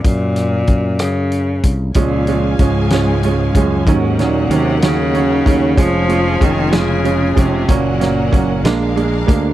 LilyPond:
<<
  \new Staff \with { instrumentName = "String section" } { \time 6/8 \key des \major \tempo 4. = 63 << { r2. | <des' aes' aes''>2. | <ees' bes' ges''>2. | <f' aes' aes''>2. |
<des' ges' ges''>4. <d' aes' f''>4. | } \\ { r2. | f''2. | des''2.~ | des''2. |
bes'4. bes'4. | } >> }
  \new Staff \with { instrumentName = "Upright piano" } { \clef bass \time 6/8 \key des \major r2. | <f aes des'>8 <f aes des'>8 <f aes des'>8 <f aes des'>8 <f aes des'>8 <f aes des'>8 | <ees ges des'>8 <ees ges des'>8 <ees ges des'>8 <ees ges des'>8 <ees ges des'>8 <ees ges des'>8 | <f aes des'>8 <f aes des'>8 <f aes des'>8 <f aes des'>8 <f aes des'>8 <f aes des'>8 |
<ges bes des'>8 <ges bes des'>8 <ges bes des'>8 <aes bes d'>8 <aes bes d'>8 <aes bes d'>8 | }
  \new Staff \with { instrumentName = "Cello" } { \clef bass \time 6/8 \key des \major bes,4. des4 r8 | bes,4 aes,4. ges,8 | aes,8 bes,8 c8 des4. | f4 ees8 des4 c8 |
bes,4. r4. | }
  \new Staff \with { instrumentName = "Fretless electric bass" } { \clef bass \time 6/8 \key des \major ges,4 ges,4. c,8 | des,4 des,4. des,8 | ees,4 ees,4. ees,8 | f,,4 f,,4. f,,8 |
ges,,4 ges,,8 bes,,4 d,8 | }
  \new DrumStaff \with { instrumentName = "Drums" } \drummode { \time 6/8 <hh bd>8 <hh ss>8 <hh bd>8 <hh ss>8 hh8 <hh bd>8 | <hh bd>8 hh8 <hh bd>8 <hh sn>8 hh8 <hh bd>8 | <hh bd>8 <hh sn>8 hh8 <hh sn>8 hh8 <hh bd>8 | <hh bd>8 hh8 <hh bd>8 <hh sn>8 hh8 <hh bd>8 |
<hh bd>8 <hh sn>8 <hh bd>8 <hh sn>8 hh8 <hh bd>8 | }
>>